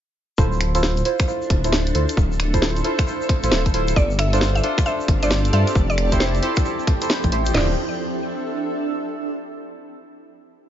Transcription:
0.38 D1 D4 E4 F4 A4 C5, kick, shaker
0.52 shaker
0.61 finger snap, open hi-hat
0.70 A4
0.75 E4 F4 A4 C5, closed hi-hat, shaker
0.83 E4 F4 A4, snare, shaker
0.97 closed hi-hat, shaker
1.05 E4 F4 A4 C5, open hi-hat
1.19 finger snap, kick, closed hi-hat, shaker
1.28 E4 F4 A4 C5, shaker
1.42 shaker
1.50 D1 E5, finger snap, kick, open hi-hat
1.64 E4 F4 A4 C5, closed hi-hat, shaker
1.72 snare, shaker
1.86 closed hi-hat, shaker
1.95 D2 E4 F4 A4 C5, open hi-hat
2.09 closed hi-hat, shaker
2.17 D1, kick, shaker
2.32 shaker
2.40 finger snap, open hi-hat
2.54 E4 F4 A4 C5, kick, closed hi-hat, shaker
2.62 E4 F4, snare, shaker
2.76 closed hi-hat, shaker
2.84 E4 F4 A4 C5, open hi-hat
2.99 finger snap, kick, closed hi-hat, shaker
3.07 E4 F4 A4 C5, shaker
3.21 shaker
3.29 finger snap, kick, open hi-hat
3.43 A1 E4 F4 A4 C5, closed hi-hat, shaker
3.51 D1, snare, shaker
3.66 G1, kick, closed hi-hat, shaker
3.74 D1 E4 F4 A4 C5, open hi-hat
3.88 closed hi-hat, shaker
3.96 G1 C4 D4 F4 G4 A4 D5, kick, shaker
4.11 shaker
4.19 E5, finger snap, open hi-hat
4.33 D4 F4 A4 C5, closed hi-hat, shaker
4.41 D5, snare, shaker
4.55 E5, closed hi-hat, shaker
4.63 D4 F4 A4 C5, open hi-hat
4.78 A5, finger snap, kick, closed hi-hat, shaker
4.86 D4 F4 A4 C5 E5, shaker
5.00 shaker
5.08 G1, finger snap, kick, open hi-hat
5.23 D4 F4 A4 C5 D5, closed hi-hat, shaker
5.31 snare, shaker
5.45 closed hi-hat, shaker
5.53 G2 D4 F4 A4 C5 E5, open hi-hat
5.67 closed hi-hat, shaker
5.75 F1 F3 E4 G4, kick, shaker
5.90 D5, shaker
5.95 G5, finger snap, open hi-hat
6.12 E4 G4 A4 C5, kick, closed hi-hat, shaker
6.20 C5, snare, shaker
6.35 closed hi-hat, shaker
6.43 E4 G4 A4 C5, open hi-hat
6.56 finger snap, kick, closed hi-hat, shaker
6.65 E4 G4 A4 C5, shaker
6.79 shaker
6.87 finger snap, kick, open hi-hat
7.01 E4 G4 A4 C5, closed hi-hat, shaker
7.09 snare, shaker
7.23 A1, kick, closed hi-hat, shaker
7.32 A1 E4 G4 A4 C5, open hi-hat
7.46 closed hi-hat, shaker
7.54 D1 D4 E4 F4 A4 C5 D5, snare, floor tom, crash
7.63 A4
7.70 E5

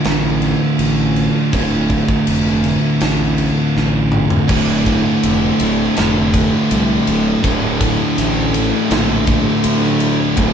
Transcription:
Already playing: D2 A2 D3 A3 F4
0.04 A1, snare, crash
0.42 crash
0.79 A1, crash
1.16 crash
1.53 D1 D2 A2 D3, kick, crash
1.90 kick, crash
2.09 kick
2.27 F1, crash
2.47 snare
2.64 D2 A2 D3, crash
3.01 A1, snare, crash
3.38 crash
3.76 A1, snare
4.12 mid tom
4.30 floor tom
4.48 D1 D2 A2 D3 A3 E4, kick, crash
4.86 kick, ride
5.23 F1, ride
5.59 D1 D2 A2 D3, ride
5.96 F1 D2 A2, snare, ride
6.00 D3
6.34 kick, ride
6.71 C2, ride
7.07 D1, ride
7.43 D1 D2 A2 D3, kick, ride
7.81 kick, ride
8.18 A1, ride
8.53 D2 A2 D3, ride
8.90 A#1 D2 A2 D3, snare, ride
9.27 kick, ride
9.64 D2, ride
9.83 snare
10.00 ride
10.37 D1 D2 A2 D3, kick, ride

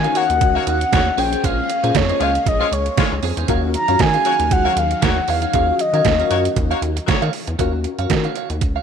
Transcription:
Already playing: D#3 C#4 D#4 F#4 G#5
0.04 C#4 D#4 F#4 A#4 C#5 F5, closed hi-hat
0.15 A#3 F#4 C#5 F5 F#5, closed hi-hat
0.29 D#2, muted clean electric guitar stroke, closed hi-hat
0.41 C#2, muted clean electric guitar stroke, kick, closed hi-hat
0.55 A#3 F#4 C#5 F5
0.67 D#2 F#4 C#5 F5 F#5, closed hi-hat
0.81 muted clean electric guitar stroke, closed hi-hat
0.92 D#2 A#3 F#4 C#5, muted clean electric guitar stroke, kick, snare, closed hi-hat
1.07 muted clean electric guitar stroke
1.18 A#1 G#3 A#3 C#4 F4 G#4 C5 G5, open hi-hat
1.32 C#4 G#4 C5, closed hi-hat
1.44 A#1 C#4 G#4 C5 F5, kick, closed hi-hat
1.58 muted clean electric guitar stroke
1.69 muted clean electric guitar stroke, closed hi-hat
1.83 A#2 C#4 F4 G#4 C5, closed hi-hat
1.95 F2 C#5, muted clean electric guitar stroke, kick, snare, closed hi-hat
2.09 C#4 F4 G#4 C5 D#5, closed hi-hat
2.20 C#2 G#3 C#4 F4 G#4 C5 C#5 F5, closed hi-hat
2.35 muted clean electric guitar stroke, closed hi-hat
2.46 A#1 D#5, muted clean electric guitar stroke, kick, closed hi-hat
2.60 G#3 C#4 F4 G#4 C5 C#5
2.72 C#2 C#5, muted clean electric guitar stroke, closed hi-hat
2.86 muted clean electric guitar stroke, closed hi-hat
2.97 G#3 F4 C#5, muted clean electric guitar stroke, kick, snare, closed hi-hat
3.12 C#2, muted clean electric guitar stroke
3.23 F2 C#4 G#4 C5, open hi-hat
3.37 E2 C#4 G#4 C5, closed hi-hat
3.48 D#2 D#3 F#3 C#4 F4 F#4 A#4 C#5 F5, kick, closed hi-hat
3.63 muted clean electric guitar stroke
3.74 A#5, muted clean electric guitar stroke, closed hi-hat
3.88 F#2 C#4 F4 F#4 C#5 F5, closed hi-hat
3.99 D#3 G#5, muted clean electric guitar stroke, kick, snare, closed hi-hat
4.14 C#4 F4 F#4 G#4 C#5 F5, closed hi-hat
4.25 A#3 F#4 C#5 F5, closed hi-hat
4.39 D#2, muted clean electric guitar stroke, closed hi-hat
4.51 C#2 F#5, muted clean electric guitar stroke, kick, closed hi-hat
4.65 A#3 F#4 C#5 F5
4.76 D#2 F5, muted clean electric guitar stroke, closed hi-hat
4.91 muted clean electric guitar stroke, closed hi-hat
5.02 D#2 A#3 F#4 C#5 F#5, muted clean electric guitar stroke, kick, snare, closed hi-hat
5.17 muted clean electric guitar stroke
5.28 E2 F#4 C#5 F5, open hi-hat
5.42 F#4 C#5 F5, closed hi-hat
5.53 D#2 C#4 D#4 F4 F#4 G#4 C#5 F5, kick, closed hi-hat
5.68 muted clean electric guitar stroke
5.79 D#5, muted clean electric guitar stroke, closed hi-hat
5.93 D#3 C#4 F4 F#4 A#4 C#5 F5, closed hi-hat
6.05 D#2, kick, snare, closed hi-hat
6.19 C#4 F4 F#4 A#4 C#5 F5, closed hi-hat
6.30 F#2 A#3 F#4 C#5 F5, closed hi-hat
6.45 muted clean electric guitar stroke, closed hi-hat
6.56 D#2, muted clean electric guitar stroke, kick, closed hi-hat
6.70 A#3 F#4 C#5 F5, closed hi-hat
6.82 D#2, muted clean electric guitar stroke, closed hi-hat
6.97 muted clean electric guitar stroke, closed hi-hat
7.07 A#3 F#4 C#5, muted clean electric guitar stroke, kick, snare, closed hi-hat
7.22 D#3 F#4 C#5 F5, closed hi-hat
7.33 muted clean electric guitar stroke, open hi-hat
7.47 E2, muted clean electric guitar stroke, closed hi-hat
7.59 D#2 C#4 F4 F#4 A#4 C#5 F5, kick, closed hi-hat
7.73 muted clean electric guitar stroke
7.84 muted clean electric guitar stroke, closed hi-hat
7.99 F#2 F#4 C#5 F5, closed hi-hat
8.10 D#3, muted clean electric guitar stroke, kick, snare, closed hi-hat
8.24 F#4 C#5 F5, closed hi-hat
8.35 F#4 C#5 F5, closed hi-hat
8.50 D#2, muted clean electric guitar stroke, closed hi-hat
8.61 C#2, muted clean electric guitar stroke, kick, closed hi-hat
8.76 F#4 C#5 F5

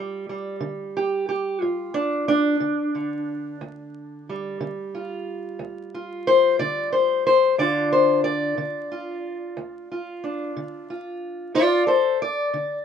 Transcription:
Already playing: G2 G3 F4
0.29 G3
0.60 D3
0.97 G4
1.29 G4
1.61 G2 F4
1.94 D4
2.28 D4
2.60 D3
2.95 D3
3.61 D2
4.29 G3
4.61 D3
4.95 F4
5.59 D2
5.94 F4
6.27 C5
6.59 D3 D5
6.93 C5
7.27 C5
7.58 D2 D3 D4 F4 D5
7.92 C5
8.24 D5
8.58 D3
8.92 F4
9.57 D2
9.92 F4
10.24 D4
10.57 D3
10.90 F4
11.54 D2 F4 D5
11.87 A4 C5
12.22 D5
12.54 D3

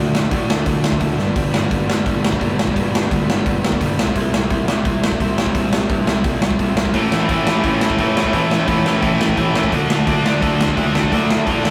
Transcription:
Already playing: D2 D3 F#3
0.00 A3 D4
0.15 snare
0.31 A2 D3 F#3 A3 D4, kick, open hi-hat
0.49 D2 D3 F#3 A3 D4, snare
0.65 D2 D3 F#3 A3 D4, kick, open hi-hat
0.82 D2, snare
0.92 kick
1.00 D2 D3 F#3 A3 D4, kick, open hi-hat
1.17 G1 G2 D3 G3 B3 D4, snare
1.35 G1 G2 D3 G3 B3 D4, kick, open hi-hat
1.53 G1, snare
1.69 G1 G2 D3 G3 B3 D4, kick, open hi-hat
1.87 G1 G2 D3 G3 B3 D4, snare
2.04 G1 G2 D3 G3 B3 D4, kick, open hi-hat
2.25 snare
2.32 kick
2.39 G1 G2 D3 G3 B3 D4, kick, open hi-hat
2.57 G1 G2 D3 G3 B3 D4, snare
2.67 kick
2.74 G1 G2 D3 G3 B3 D4, kick, open hi-hat
2.95 snare
3.10 D2 G2 D3 G3 B3 D4, kick, open hi-hat
3.28 G1 G2 D3 G3 B3 D4, snare
3.45 G1 G2 D3 G3 B3 D4, kick, open hi-hat
3.62 G1, snare
3.72 kick
3.81 G1 G2 D3 G3 B3 D4, kick, open hi-hat
3.96 C2 C3 G3, snare
4.00 C4 E4
4.07 kick
4.15 C2 C3 G3 C4 E4, kick, open hi-hat
4.33 C2, snare
4.50 C2 C3 G3 C4 E4, kick, open hi-hat
4.67 C2 C3 G3 C4 E4, snare
4.84 C2 C3 G3 C4 E4, kick, open hi-hat
5.04 snare
5.12 kick
5.20 C2 C3 G3 C4 E4, kick, open hi-hat
5.36 C2 C3 G3 C4, snare
5.40 E4
5.46 kick
5.54 C2 C3 G3 C4 E4, kick, open hi-hat
5.73 snare
5.89 G2 C3 G3 C4 E4, kick, open hi-hat
6.06 C2 C3 G3 C4 E4, snare
6.24 C2 C3 G3 C4 E4, kick, open hi-hat
6.41 C2, snare
6.51 kick
6.59 C2 C3 G3 C4 E4, kick, open hi-hat
6.76 C2 C3 G3 C4 E4, snare
6.85 kick
6.93 A1 A2 E3 A3 C#4 E4, kick, open hi-hat
7.12 A1, snare
7.29 A1 A2 E3 A3 C#4 E4, kick, open hi-hat
7.47 A1 A2 E3 A3 C#4 E4, snare
7.63 A1 A2 E3 A3 C#4 E4, kick, open hi-hat
7.81 snare
7.90 kick
7.98 A1 A2 E3 A3 C#4 E4, kick, open hi-hat
8.15 A1 A2 E3 A3 C#4 E4, snare
8.25 kick
8.32 A1 A2 E3 A3 C#4 E4, kick, open hi-hat
8.51 snare
8.67 E2 A2 E3 A3 C#4 E4, kick, open hi-hat
8.84 A1 A2 E3 A3 C#4 E4, snare
9.02 A1 A2 E3 A3 C#4 E4, kick, open hi-hat
9.19 A1, snare
9.29 kick
9.37 A1 A2 E3 A3 C#4 E4, kick, open hi-hat
9.53 A1 A2 E3 A3 C#4 E4, snare
9.63 kick
9.71 D2 D3 F#3 A3 D4, kick, open hi-hat
9.89 D2, snare
10.07 D2 D3 F#3 A3 D4, kick, open hi-hat
10.24 D2 D3 F#3 A3 D4, snare
10.41 D2 D3 F#3 A3 D4, kick, open hi-hat
10.61 snare
10.68 kick
10.76 D2 D3 F#3 A3 D4, kick, open hi-hat
10.93 D2 D3 F#3 A3 D4, snare
11.03 kick
11.11 D2 D3 F#3 A3 D4, kick, open hi-hat
11.31 snare
11.46 A2 D3 F#3 A3 D4, kick, open hi-hat
11.63 D2 D3 F#3 A3 D4, snare

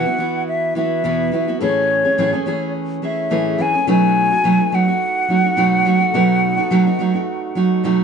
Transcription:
Already playing: B3 E4 F#4 E5 F#5
0.06 E3 B3 E4 F#4
0.18 E3 B3 E4 F#4
0.48 E5
0.75 E3 B3 E4 F#4 E5
1.04 E2 B2 E3 B3 E4 F#4
1.32 E3 B3 E4 F#4
1.48 E3 B3 E4 F#4
1.59 A2 E3 A3 C#4 E4 G#4 C#5
1.63 B4
1.69 C#5
2.05 A3 C#4 G#4
2.18 A2 E3 A3 C#4 G#4
2.33 A3 C#4 G#4
2.46 E3 A3 C#4 G#4
3.02 E3 A3 C#4 G#4 E5
3.30 A2 E3 A3 C#4 E4 G#4 B4
3.58 E3 A3 C#4 G#4 G#5
3.74 A3 C#4 G#4
3.86 B2 F#3 A3 C#4 D#4 F#4
3.90 D#4 B4 G#5
4.32 A3 D#4 F#4
4.44 B2 F#3 A3 D#4 F#4
4.60 A3 D#4 F#4
4.72 F#3 A3 D#4 F#4 F#5
4.88 A3 D#4 F#4
5.28 F#3 A3 D#4 F#4
5.44 A3 D#4 F#4
5.57 B2 F#3 A3 D#4 F#4
5.85 F#3 A3 D#4 F#4
6.00 A3 D#4 F#4
6.12 B2 F#3 A3 D#4 F#4
6.16 B4
6.57 A3 D#4 F#4
6.71 B2 F#3 A3 D#4 F#4
6.86 A3 D#4 F#4
6.99 F#3 A3 D#4 F#4
7.14 A3 D#4 F#4
7.55 F#3 A3 D#4 F#4
7.84 B2 F#3 A3 D#4 F#4

